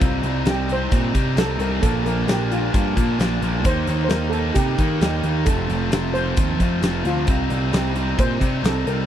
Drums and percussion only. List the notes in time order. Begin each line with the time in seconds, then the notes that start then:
0.01 kick, closed hi-hat
0.23 closed hi-hat
0.46 snare, closed hi-hat
0.69 closed hi-hat
0.92 kick, closed hi-hat
1.15 kick, closed hi-hat
1.37 snare, closed hi-hat
1.60 closed hi-hat
1.83 kick, closed hi-hat
2.06 closed hi-hat
2.28 snare, closed hi-hat
2.52 closed hi-hat
2.74 kick, closed hi-hat
2.97 kick, closed hi-hat
3.20 snare, closed hi-hat
3.42 closed hi-hat
3.65 kick, closed hi-hat
3.87 closed hi-hat
4.10 snare, closed hi-hat
4.33 closed hi-hat
4.55 kick, closed hi-hat
4.78 kick, closed hi-hat
5.01 snare, closed hi-hat
5.23 closed hi-hat
5.46 kick, closed hi-hat
5.70 closed hi-hat
5.92 snare, closed hi-hat
6.15 closed hi-hat
6.37 kick, closed hi-hat
6.60 kick, closed hi-hat
6.83 snare, closed hi-hat
7.05 closed hi-hat
7.27 kick, closed hi-hat
7.50 closed hi-hat
7.73 snare, closed hi-hat
7.85 snare
7.96 closed hi-hat
8.19 kick, closed hi-hat
8.41 kick, closed hi-hat
8.64 snare, closed hi-hat
8.87 closed hi-hat